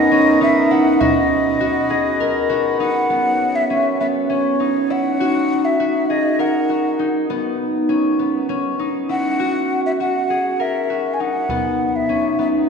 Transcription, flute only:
0.00 0.41 D#5 loud
0.42 0.73 E5 medium
0.71 1.02 F#5 medium
1.00 2.79 D#5 medium
2.80 3.57 F#5 loud
3.55 3.99 E5 medium
4.00 4.07 E5 medium
4.30 4.92 C#5 medium
4.91 5.66 F#5 medium
5.64 6.11 E5 medium
6.10 6.41 D#5 medium
6.40 7.07 F#5 medium
9.10 9.81 F#5 loud
9.86 9.92 E5 medium
10.00 10.62 F#5 medium
10.61 11.15 E5 medium
11.13 11.22 G#5 medium
11.20 11.88 F#5 medium
11.88 11.97 F#5 medium
11.95 12.39 E5 medium
12.40 12.47 E5 medium

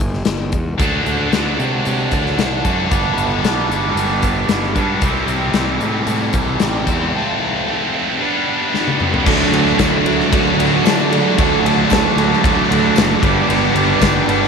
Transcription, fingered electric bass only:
0.00 0.22 G1 medium
0.26 0.50 G1 medium
0.52 0.76 E2 medium
0.79 1.03 D2 medium
1.05 1.29 D2 medium
1.32 1.56 D2 medium
1.59 1.83 C3 medium
1.87 2.10 C3 medium
2.12 2.36 D2 medium
2.39 2.62 C2 medium
2.65 2.89 F#2 medium
2.91 3.15 G1 medium
3.16 3.41 G1 medium
3.43 3.68 B1 medium
3.70 3.94 G1 medium
3.95 4.45 G1 medium
4.49 4.73 G1 medium
4.76 5.00 G2 medium
5.01 5.25 C2 loud
5.26 5.51 C2 medium
5.53 5.78 C2 medium
5.81 6.05 A2 medium
6.06 6.31 A2 medium
6.34 6.58 C2 medium
6.60 6.85 A1 medium
6.86 7.11 E2 medium
9.26 9.43 D2 loud
9.52 9.69 D2 medium
9.79 9.96 D2 medium
10.04 10.22 D2 medium
10.33 10.50 D2 medium
10.57 10.75 D2 medium
10.84 11.19 D3 medium
11.38 11.55 D2 loud
11.64 11.81 D2 medium
11.91 12.08 D2 medium
12.16 12.34 D2 medium
12.44 12.61 D2 loud
12.71 12.88 D2 medium
12.98 13.15 F#1 medium
13.22 13.40 G1 medium
13.48 13.66 G1 loud
13.75 13.92 G1 medium
14.01 14.19 G1 medium
14.27 14.45 G1 medium

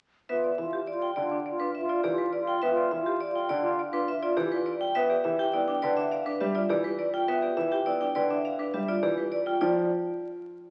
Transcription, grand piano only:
0.29 0.48 B3 medium
0.58 0.77 E3 medium
1.17 1.36 D3 medium
2.04 2.23 E3 medium
2.63 2.81 B3 medium
2.92 3.11 E3 medium
3.50 3.69 D3 medium
4.37 4.56 E3 medium
4.96 5.14 B3 medium
5.25 5.43 E3 medium
5.54 5.73 B3 medium
5.83 6.02 D3 medium
6.41 6.60 G3 medium
6.70 6.89 E3 medium
7.28 7.47 B3 medium
7.57 7.76 E3 medium
7.86 8.05 B3 medium
8.16 8.35 D3 medium
8.74 8.93 G3 medium
9.03 9.22 E3 medium
9.61 9.88 F3 medium

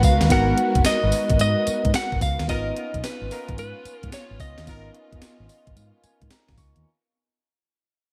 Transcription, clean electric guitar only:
0.05 0.32 F5 medium
0.32 0.82 F#5 loud
0.86 1.40 D#5 loud
1.41 1.95 D#5 loud
1.96 2.20 F#5 loud
2.22 2.49 F5 loud
2.49 3.05 D#5 loud
3.04 3.58 B4 medium
3.59 3.96 B4 medium
3.96 4.09 A#4 medium
4.14 4.41 C#5 medium
4.40 6.27 D#5 medium

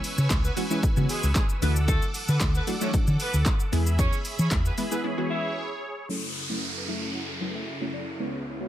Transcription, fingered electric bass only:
0.18 0.26 C#3 loud
0.31 0.48 C#2 medium
0.83 muted fingered electric bass stroke medium
0.97 1.05 C#3 loud
1.23 1.31 C#2 loud
1.62 1.96 D2 loud
2.29 2.37 D3 loud
2.41 2.58 D2 medium
2.94 muted fingered electric bass stroke soft
3.07 3.15 D3 loud
3.34 3.42 D2 loud
3.73 4.06 E2 loud
4.39 4.47 E3 loud
4.52 4.68 E2 medium

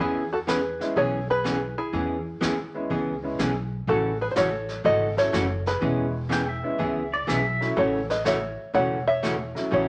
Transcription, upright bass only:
0.00 0.77 E2 medium
0.96 1.74 B1 medium
1.93 2.32 E2 medium
2.42 2.83 D#2 medium
2.90 3.32 C#2 medium
3.39 3.81 B1 medium
3.87 4.27 A1 medium
4.37 4.78 A1 medium
4.85 5.26 G#1 medium
5.33 5.75 F#1 medium
5.82 6.60 E1 loud
6.80 7.21 C#2 medium
7.29 7.70 B1 medium
7.77 8.55 A1 medium
8.74 9.52 E1 medium
9.72 9.88 A1 medium

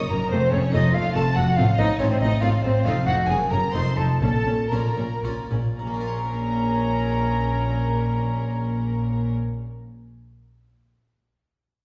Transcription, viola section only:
0.10 0.18 A#3 medium
0.31 0.39 A3 medium
0.52 0.60 A3 medium
0.73 0.81 A3 medium
0.95 1.03 A3 medium
1.15 1.23 A3 medium
1.35 1.43 A3 medium
1.57 1.65 C4 medium
1.79 1.87 C4 medium
2.00 2.08 C4 medium
2.22 2.30 C4 medium
2.42 2.50 C4 medium
2.65 2.73 C4 medium
2.87 2.95 D#4 medium
3.08 3.16 D#4 medium
3.30 3.38 C#4 medium
3.52 3.60 C#4 medium
3.74 3.82 D#4 medium
3.98 4.06 D#4 medium
4.22 4.30 C#4 medium
4.46 4.54 C#4 medium
4.71 4.79 C#4 medium
4.97 5.05 C#4 medium
5.23 5.31 C#4 medium
5.51 5.59 C#4 medium
5.78 9.32 C#4 medium

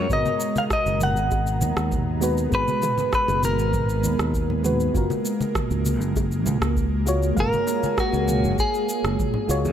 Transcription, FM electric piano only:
0.00 0.08 G#3 medium
0.00 0.11 F4 medium
0.00 0.11 F#4 medium
0.00 0.11 C#5 medium
0.08 2.17 G#3 medium
0.08 2.18 B3 medium
0.08 2.19 F#4 medium
0.13 2.20 A#4 medium
2.21 2.48 G#3 medium
2.21 2.48 B3 medium
2.21 2.49 F#4 medium
2.21 2.49 B4 medium
2.50 4.60 G#3 medium
2.50 4.60 B3 medium
2.50 4.61 F#4 medium
2.55 4.62 G#4 medium
4.63 4.90 G#3 medium
4.63 4.91 B3 medium
4.63 4.91 F#4 medium
4.63 4.92 B4 medium
4.92 7.02 G#3 medium
4.92 7.03 F4 medium
4.92 7.04 F#4 medium
4.97 7.05 A#4 medium
7.06 7.33 G#3 medium
7.06 7.34 F4 medium
7.06 7.34 F#4 medium
7.06 7.34 C#5 medium
7.35 9.45 G#3 medium
7.35 9.46 F#4 medium
7.35 9.45 F5 medium
7.40 9.47 A#4 medium
9.48 9.72 G#3 medium
9.48 9.72 F4 medium
9.48 9.72 F#4 medium
9.48 9.72 C#5 loud

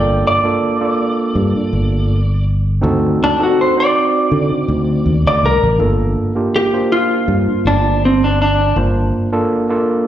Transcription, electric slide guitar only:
0.00 0.24 D5 medium
0.27 2.44 D5 medium
3.24 3.41 D4 medium
3.43 3.59 F#4 medium
3.61 3.78 C5 medium
3.80 5.23 D5 medium
5.27 5.43 D5 medium
5.46 5.80 A#4 medium
6.56 6.91 G4 medium
6.92 7.63 F4 medium
7.67 8.02 D4 medium
8.05 8.23 C4 medium
8.24 8.40 D4 medium
8.42 8.76 D4 medium

